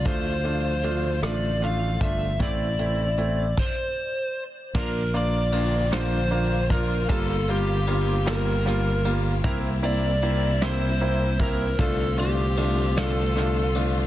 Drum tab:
CC |------|---x--|x-----|------|
RD |------|------|-xxxxx|xxxxxx|
HH |xxxxxx|xxx---|------|------|
SD |---r--|------|---o--|---oo-|
BD |o----o|o--o--|o----o|o-----|

CC |------|------|
RD |xxxxxx|xxxxxx|
HH |------|------|
SD |---o--|---oo-|
BD |o----o|o-----|